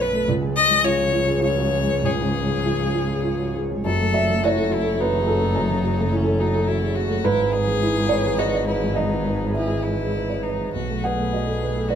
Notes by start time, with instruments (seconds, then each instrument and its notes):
Already playing: grand piano B1 F#2 A3 F#4 A4 C#5, double bass B1, analog synth pad F#3 A4 B4
0.00 grand piano B4, violin B4
0.13 grand piano A3
0.26 double bass C#2, grand piano C#2, analog synth pad F3 G#4 C#5
0.41 grand piano G#3
0.55 grand piano G#4, violin D#5
0.71 grand piano G#3
0.84 grand piano F4, violin C#5
0.98 grand piano G#4
1.12 grand piano F4
1.28 grand piano G#4
1.42 grand piano F4, violin C#5
1.57 grand piano F#4
1.72 grand piano G#4
1.87 grand piano G#3
2.04 grand piano C#2, violin G#4
2.19 grand piano G#2
2.35 grand piano G#4
2.50 grand piano G#3
2.65 grand piano F4
2.82 grand piano G#4
2.94 grand piano F4
3.10 grand piano G#4
3.24 grand piano F4
3.40 grand piano F#4
3.55 grand piano G#4
3.71 grand piano G#3
3.84 double bass F#1, grand piano F#2, analog synth pad E3 A4 C#5, violin A4
4.00 grand piano A3
4.13 grand piano F#4 E5
4.30 grand piano A3
4.44 grand piano E4 C#5, violin F#4
4.57 grand piano A4
4.70 violin E4, grand piano F#4
4.83 grand piano A4
4.97 violin D#4, grand piano F#4 B4
5.14 grand piano G#4
5.27 grand piano F#4 A4
5.42 grand piano A3
5.55 grand piano F#2
5.70 grand piano C#3
5.84 grand piano F#4
5.99 grand piano A3
6.11 violin C#4, grand piano E4
6.24 grand piano A4
6.40 violin D#4, grand piano F#4
6.55 grand piano A4
6.68 violin E4, grand piano F#4
6.82 grand piano G#4
6.95 grand piano F#4, violin F#4
7.09 grand piano A3
7.21 double bass G#1, grand piano G#2 B4, analog synth pad E3 G#4 B4, violin E4
7.40 grand piano G#3
7.52 violin G#4, grand piano B4
7.67 grand piano G#3
7.82 grand piano E4
7.97 grand piano G#4
8.09 grand piano B4 C#5
8.24 grand piano G#4
8.38 violin F#4, grand piano B4 D#5
8.54 grand piano C#5
8.67 violin E4, grand piano B4
8.83 grand piano G#3
8.95 grand piano G#2 D#5, violin D#4
9.12 grand piano D#3
9.27 grand piano B4
9.43 grand piano G#3
9.54 grand piano E4 E5, violin G#4
9.72 grand piano G#4
9.83 violin E4, grand piano B4
10.00 grand piano G#4
10.14 grand piano B4
10.30 grand piano C#5
10.43 violin D#4, grand piano B4
10.60 grand piano G#3
10.73 double bass B1, grand piano B1, analog synth pad F#3 A3 B4, violin F#4
10.90 grand piano A3
11.04 violin G#4, grand piano B4 F#5
11.19 grand piano A3
11.33 grand piano F#4 D#5
11.47 grand piano A4
11.63 grand piano B4
11.76 grand piano A4
11.88 violin F#4, grand piano B4 C#5